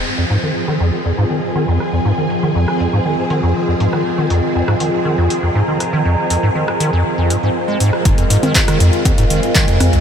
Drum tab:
HH |--o---o---o---o-|--o---o---o---o-|--o---o---o---o-|--o---o---o---o-|
CP |----------------|----------------|----------------|----------------|
SD |-----r--------r-|-----r---------r|-----r--------r-|-----r---------r|
CG |----------------|----------------|----------------|----------------|
BD |----------------|----------------|----------------|----------------|

HH |xxoxxxoxxxoxxxox|
CP |----x-------x---|
SD |-----r--------r-|
CG |---o----o-----o-|
BD |o---o---o---o---|